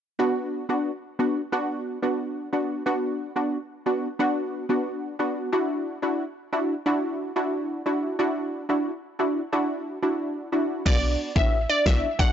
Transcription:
0.19 0.65 B3 medium
0.19 0.65 D4 medium
0.19 0.65 F#4 loud
0.69 0.91 B3 medium
0.69 0.91 D4 medium
0.69 0.91 F#4 medium
1.19 1.41 B3 medium
1.19 1.41 D4 medium
1.19 1.41 F#4 medium
1.52 1.98 B3 medium
1.52 1.99 D4 medium
1.52 1.99 F#4 loud
2.02 2.49 B3 medium
2.02 2.49 D4 medium
2.02 2.49 F#4 medium
2.53 2.83 B3 medium
2.53 2.83 D4 medium
2.53 2.84 F#4 medium
2.86 3.32 B3 medium
2.86 3.32 D4 medium
2.86 3.32 F#4 loud
3.36 3.58 B3 medium
3.36 3.58 D4 medium
3.36 3.58 F#4 medium
3.86 4.08 B3 medium
3.86 4.08 D4 medium
3.86 4.08 F#4 medium
4.19 4.65 B3 medium
4.19 4.66 D4 medium
4.19 4.66 F#4 loud
4.69 5.15 B3 medium
4.69 5.15 D4 medium
4.69 5.16 F#4 medium
5.19 5.50 B3 medium
5.19 5.50 D4 medium
5.19 5.50 F#4 medium
5.53 5.99 D4 medium
5.53 5.99 E4 medium
5.53 5.99 F#4 loud
6.02 6.24 D4 medium
6.02 6.24 E4 medium
6.02 6.25 F#4 medium
6.53 6.74 D4 medium
6.53 6.75 E4 medium
6.53 6.75 F#4 medium
6.86 7.32 D4 medium
6.86 7.32 E4 medium
6.86 7.32 F#4 loud
7.36 7.82 D4 medium
7.36 7.82 E4 medium
7.36 7.82 F#4 medium
7.86 8.17 D4 medium
7.86 8.17 E4 medium
7.86 8.17 F#4 medium
8.19 8.65 D4 medium
8.19 8.65 E4 medium
8.19 8.65 F#4 loud
8.69 8.91 D4 medium
8.69 8.91 E4 medium
8.69 8.91 F#4 medium
9.19 9.41 D4 medium
9.19 9.41 E4 medium
9.19 9.41 F#4 medium
9.52 9.99 D4 medium
9.52 9.99 E4 medium
9.52 9.99 F#4 loud
10.02 10.49 D4 medium
10.02 10.49 E4 medium
10.02 10.49 F#4 medium
10.52 10.83 D4 medium
10.52 10.83 E4 medium
10.52 10.83 F#4 medium
10.85 11.17 B1 loud
10.85 11.32 B3 medium
10.85 11.32 D4 medium
10.85 11.32 F#4 loud
10.85 10.98 D5 loud
10.85 kick loud
10.85 crash medium
11.35 11.66 A1 medium
11.35 11.58 B3 medium
11.35 11.58 D4 medium
11.35 11.58 F#4 medium
11.35 11.48 E5 medium
11.35 kick medium
11.70 11.82 D5 medium
11.86 12.01 B1 medium
11.86 12.08 B3 medium
11.86 12.08 D4 medium
11.86 12.08 F#4 medium
11.86 11.98 E5 medium
11.86 kick loud
11.86 snare loud
12.19 12.32 B3 loud
12.19 12.32 D4 medium
12.19 12.32 F#4 loud
12.19 12.31 F#5 medium
12.19 kick medium

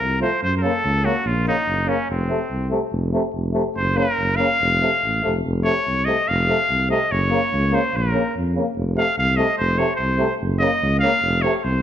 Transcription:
0.00 0.24 C2 medium
0.00 0.21 A#4 loud
0.21 0.29 F3 medium
0.21 0.29 A3 medium
0.21 0.41 C5 loud
0.43 0.65 F#2 medium
0.43 0.55 C5 loud
0.57 0.64 A#4 medium
0.62 0.70 C#3 medium
0.62 0.73 A#3 medium
0.62 1.07 A4 loud
0.84 1.07 C#2 medium
1.04 1.13 C#3 medium
1.04 1.14 A#3 medium
1.04 1.28 F#4 medium
1.25 1.48 A#1 medium
1.25 1.47 F4 medium
1.46 1.55 C#3 medium
1.46 1.55 A#3 medium
1.46 1.90 D#4 medium
1.66 1.90 F#1 medium
1.87 1.96 C#3 medium
1.87 1.97 A#3 medium
1.87 2.10 C#4 medium
2.09 2.32 F1 medium
2.09 2.69 C4 medium
2.29 2.38 C3 medium
2.29 2.38 A3 medium
2.50 2.74 C2 medium
2.71 2.80 C3 medium
2.71 2.79 A3 medium
2.92 3.15 F1 medium
3.13 3.22 C3 medium
3.13 3.21 A3 medium
3.34 3.58 F1 medium
3.53 3.63 C3 medium
3.53 3.62 A3 medium
3.76 4.00 F#1 medium
3.76 3.99 C5 loud
3.95 4.06 C#3 medium
3.95 4.04 A#3 medium
3.95 4.38 A#4 loud
4.18 4.41 F#1 medium
4.36 4.48 C#3 medium
4.36 4.46 A#3 medium
4.36 5.42 F5 loud
4.61 4.84 F1 medium
4.80 4.89 C3 medium
4.80 4.89 A3 medium
5.03 5.21 A1 medium
5.23 5.43 F1 medium
5.23 5.32 C3 medium
5.23 5.31 A3 medium
5.45 5.68 F1 loud
5.63 5.74 C3 medium
5.63 5.72 A3 medium
5.63 6.07 C#5 loud
5.87 6.09 C2 medium
6.05 6.15 C3 medium
6.05 6.15 A3 medium
6.05 6.30 D#5 loud
6.28 6.51 F1 loud
6.28 6.90 F5 loud
6.48 6.56 C3 medium
6.48 6.57 A3 medium
6.69 6.92 C2 medium
6.89 6.98 C3 medium
6.89 6.98 A3 medium
6.89 7.13 D#5 medium
7.11 7.34 F#1 medium
7.11 7.76 C#5 loud
7.30 7.40 C#3 medium
7.30 7.39 A#3 medium
7.53 7.75 C#2 medium
7.71 7.82 C#3 medium
7.71 7.80 A#3 medium
7.71 7.98 C5 medium
7.94 8.17 A#1 medium
7.94 8.36 A#4 medium
8.13 8.21 C#3 medium
8.13 8.22 A#3 medium
8.36 8.58 F2 medium
8.55 8.63 C#3 medium
8.55 8.65 A#3 medium
8.77 8.99 F1 medium
8.96 9.04 C3 medium
8.96 9.05 A3 medium
8.96 9.16 F5 loud
9.18 9.40 C2 medium
9.18 9.38 F5 loud
9.37 9.46 C3 medium
9.37 9.46 A3 medium
9.37 9.57 D#5 medium
9.58 9.81 F1 medium
9.58 9.80 C5 medium
9.77 9.86 C3 medium
9.77 9.87 A3 medium
9.77 9.95 C#5 medium
9.96 10.36 C5 medium
10.00 10.22 C2 medium
10.18 10.26 C3 medium
10.18 10.27 A3 medium
10.41 10.64 F#1 loud
10.58 10.69 C#3 medium
10.58 10.69 A#3 medium
10.58 10.98 D#5 loud
10.82 11.05 C#2 medium
10.99 11.10 C#3 medium
10.99 11.43 F5 loud
11.04 11.12 A#3 medium
11.23 11.45 F1 medium
11.42 11.52 C3 medium
11.42 11.52 A3 medium
11.42 11.57 C#5 loud
11.57 11.65 C#5 medium
11.63 11.82 C2 medium
11.63 11.82 C5 medium

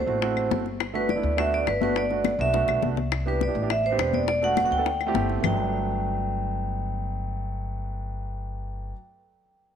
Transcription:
0.00 0.48 C5 medium
0.06 0.48 A1 medium
0.06 0.17 A3 medium
0.06 0.17 C4 medium
0.06 0.18 E4 medium
0.06 0.18 F#4 medium
0.21 0.62 A3 medium
0.21 0.62 C4 medium
0.21 0.63 E4 medium
0.21 0.63 F#4 medium
0.21 high bongo medium
0.21 high conga soft
0.37 high bongo soft
0.37 high conga soft
0.37 claves medium
0.51 1.18 G1 medium
0.51 high bongo medium
0.51 low bongo medium
0.51 high conga medium
0.66 high bongo soft
0.66 high conga soft
0.80 high bongo medium
0.80 high conga soft
0.80 claves medium
0.94 1.09 A3 medium
0.94 1.09 B3 medium
0.94 1.10 D4 medium
0.94 1.10 F#4 medium
0.94 1.10 B4 medium
0.94 high conga soft
1.09 1.39 D5 medium
1.09 high bongo medium
1.09 high conga medium
1.16 1.31 A3 medium
1.16 1.31 B3 medium
1.16 1.31 D4 medium
1.16 1.32 E4 medium
1.23 1.64 D2 loud
1.23 high conga soft
1.37 1.68 A3 medium
1.37 1.68 B3 medium
1.37 1.68 D4 medium
1.37 1.69 F#4 medium
1.37 1.53 E5 medium
1.37 high bongo medium
1.37 high conga soft
1.37 claves medium
1.53 1.67 D5 medium
1.53 high conga soft
1.66 2.34 G1 medium
1.66 1.82 B4 medium
1.66 high bongo medium
1.66 low bongo medium
1.66 high conga soft
1.66 claves medium
1.81 2.01 A3 medium
1.81 2.01 B3 medium
1.81 2.02 D4 medium
1.81 2.02 F#4 medium
1.81 1.97 B4 medium
1.81 high conga medium
1.96 2.41 D5 medium
1.96 high bongo medium
1.96 high conga soft
2.10 2.30 A3 medium
2.10 2.31 B3 medium
2.10 2.31 D4 medium
2.10 2.31 F#4 medium
2.10 high bongo soft
2.10 high conga soft
2.24 high bongo medium
2.24 high conga medium
2.24 claves medium
2.39 2.66 B1 medium
2.39 2.49 A3 medium
2.39 2.49 B3 medium
2.39 2.50 D4 medium
2.39 2.50 F#4 medium
2.39 2.81 E5 medium
2.53 2.94 A3 medium
2.53 2.94 B3 medium
2.53 2.94 D4 medium
2.53 2.95 F#4 medium
2.53 high bongo medium
2.53 high conga soft
2.68 2.82 B1 medium
2.68 low bongo medium
2.68 high conga soft
2.68 claves medium
2.82 3.49 C2 medium
2.82 low bongo medium
2.82 high conga medium
2.97 low bongo medium
2.97 high conga soft
3.12 high bongo medium
3.12 high conga soft
3.12 claves medium
3.26 3.41 B3 medium
3.26 3.41 D4 medium
3.26 3.42 E4 medium
3.26 3.42 G4 medium
3.26 3.34 B4 medium
3.26 high conga soft
3.41 3.72 D5 medium
3.41 high bongo medium
3.41 high conga medium
3.47 3.58 B3 medium
3.47 3.58 D4 medium
3.47 3.58 E4 medium
3.47 3.58 G4 medium
3.55 3.95 A1 medium
3.55 high conga soft
3.61 3.69 B3 medium
3.61 3.69 D4 medium
3.61 3.70 E4 medium
3.61 3.70 G4 medium
3.70 3.85 E5 medium
3.70 high bongo medium
3.70 high conga soft
3.70 claves medium
3.84 4.15 C5 medium
3.84 high conga soft
3.91 4.27 B3 medium
3.91 4.27 C4 medium
3.91 4.27 D4 medium
3.91 4.27 G4 medium
3.98 4.65 E1 medium
3.98 high bongo medium
3.98 low bongo medium
3.98 high conga soft
3.98 claves medium
4.13 4.28 D5 medium
4.13 high conga medium
4.28 4.43 D5 medium
4.28 high bongo medium
4.28 high conga soft
4.42 4.57 A3 medium
4.42 4.57 B3 medium
4.42 4.58 D4 medium
4.42 4.58 F#4 medium
4.42 4.64 F#5 loud
4.42 high bongo soft
4.42 high conga soft
4.57 high bongo medium
4.57 high conga medium
4.57 claves medium
4.63 4.74 A3 medium
4.63 4.74 B3 medium
4.63 4.74 D4 medium
4.63 4.74 F#4 medium
4.63 4.72 F#5 medium
4.71 5.11 D2 medium
4.71 5.26 G5 medium
4.78 4.85 A3 medium
4.78 4.86 B3 medium
4.78 4.86 D4 medium
4.78 4.86 A4 medium
4.86 high bongo medium
4.86 high conga soft
5.00 high bongo soft
5.00 high conga soft
5.00 claves medium
5.07 5.39 A3 medium
5.07 5.43 C4 medium
5.07 5.43 E4 medium
5.07 5.43 G4 medium
5.14 5.40 G1 medium
5.14 high bongo medium
5.14 low bongo medium
5.14 high conga medium
5.30 high bongo soft
5.30 high conga soft
5.41 8.91 G1 medium
5.41 8.88 A3 medium
5.41 8.90 B3 medium
5.41 low bongo medium
5.41 low conga medium
5.41 claves medium
5.45 8.95 F#3 medium
5.45 8.93 D4 medium
5.45 8.93 G5 medium

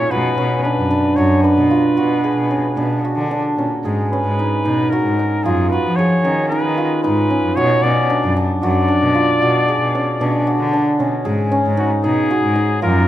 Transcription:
0.00 0.10 A#2 medium
0.00 0.37 C#4 medium
0.00 0.71 D#4 medium
0.00 0.17 F4 medium
0.00 1.56 G#4 medium
0.00 0.12 C#5 medium
0.11 0.35 B2 medium
0.11 1.17 F#4 medium
0.11 0.62 B4 medium
0.38 0.62 B2 medium
0.38 0.71 C#4 medium
0.63 0.90 D4 medium
0.63 1.18 B4 medium
0.78 1.01 F#2 medium
0.91 1.44 D4 medium
1.16 1.41 F#2 medium
1.16 1.76 F#4 medium
1.16 1.43 C#5 medium
1.44 2.57 D4 medium
1.44 3.00 B4 medium
1.57 1.81 B2 medium
1.70 2.03 F4 medium
1.97 2.32 B2 medium
1.97 3.04 F#4 medium
2.24 3.85 G#4 medium
2.36 2.60 B2 medium
2.51 2.83 C#4 soft
2.77 3.00 B2 medium
2.77 3.30 D4 medium
3.05 4.92 F#4 medium
3.16 3.40 D3 medium
3.31 3.64 D4 medium
3.57 3.69 A#2 soft
3.57 4.12 C#4 soft
3.84 4.08 G#2 medium
3.84 5.98 G#4 medium
4.12 6.24 C#4 medium
4.12 4.91 B4 medium
4.24 4.48 G#2 medium
4.39 4.65 D#4 medium
4.65 5.00 B2 medium
4.65 5.19 D#4 medium
4.90 5.51 F#4 medium
4.90 5.45 A#4 medium
5.05 5.28 G#2 medium
5.19 6.51 D#4 medium
5.44 5.80 F#2 medium
5.44 5.78 F4 medium
5.44 5.71 G#4 medium
5.70 6.83 F#4 medium
5.70 5.98 B4 medium
5.84 6.20 F3 medium
5.96 9.02 G#4 medium
5.96 6.48 C#5 medium
6.24 6.60 D#3 medium
6.24 7.30 C#4 medium
6.49 7.04 D#4 medium
6.49 6.99 B4 medium
6.64 6.88 D#3 medium
6.77 7.63 F4 medium
7.03 7.39 G#2 medium
7.03 8.16 D#4 medium
7.03 7.57 B4 medium
7.30 7.83 C#4 medium
7.44 7.56 F#2 medium
7.56 7.81 B2 medium
7.56 8.63 F#4 medium
7.56 7.84 C#5 medium
7.82 8.07 B2 medium
7.82 8.16 C#4 medium
7.82 8.35 D5 medium
8.10 8.36 D4 medium
8.24 8.47 F#2 medium
8.37 8.88 D4 medium
8.62 8.86 F#2 medium
8.62 9.21 F#4 medium
8.62 10.69 D5 medium
8.88 10.01 D4 medium
9.02 9.25 B2 medium
9.15 9.48 F4 medium
9.42 9.77 B2 medium
9.42 10.46 F#4 medium
9.68 11.25 G#4 medium
9.81 10.04 B2 medium
9.95 10.27 C#4 medium
10.20 10.44 B2 medium
10.20 10.73 D4 medium
10.47 12.30 F#4 medium
10.60 10.83 D3 medium
10.73 11.06 D4 medium
11.00 11.11 B2 medium
11.00 11.51 C#4 medium
11.25 11.49 G#2 medium
11.25 13.08 G#4 medium
11.52 13.08 C#4 medium
11.65 11.88 G#2 medium
11.77 12.04 D#4 medium
11.77 11.91 F#4 medium
12.04 12.39 B2 medium
12.04 12.55 D#4 medium
12.04 12.79 G#4 medium
12.30 12.88 F#4 medium
12.44 12.67 G#2 medium
12.56 13.08 D#4 medium
12.82 13.08 F#2 medium
12.82 13.08 F4 medium
12.82 13.08 A#4 medium

